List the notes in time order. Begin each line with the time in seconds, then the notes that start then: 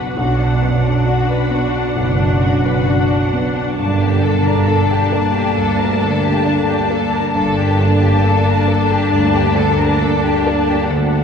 Already playing: B1 F#2 B3 D4 F#4 B4 F#5
0.16 B1 B2 D4 F#4 F#5
0.41 D4
0.62 F#2 B3
0.86 D4
1.05 D4 F#4
1.31 B4
1.51 B3 F#4
1.75 D4
1.96 F#1 B1 F#2 B3
2.19 D4
2.42 F#2 F#4
2.65 B4
2.87 D4 F#4
3.09 D4
3.33 B3
3.57 D4
3.76 G1 G2 A#3 D4 A4 A5
4.00 G4
4.23 D3 A4
4.47 A#4
4.68 D4 A4
4.91 G4
5.12 A#3 D4
5.33 G4
5.56 D2 G2 A4
5.79 A#4
6.01 D3 A4
6.23 G4
6.46 D4 A4
6.68 G4
6.90 A#3 A4
7.15 A#4
7.35 G1 G2 A#3 D4 A4 A5
7.59 G4
7.79 D3 D4
8.02 G4
8.24 D4 A4
8.49 A#4
8.68 A#3 A4
8.92 G4
9.11 D2 G2 D4
9.35 G4
9.56 D3 A4
9.80 A#4
10.02 D4 A4
10.25 G4
10.47 A#3 D4
10.69 G4
10.89 D2 A3 D4 F#4 A4 F#5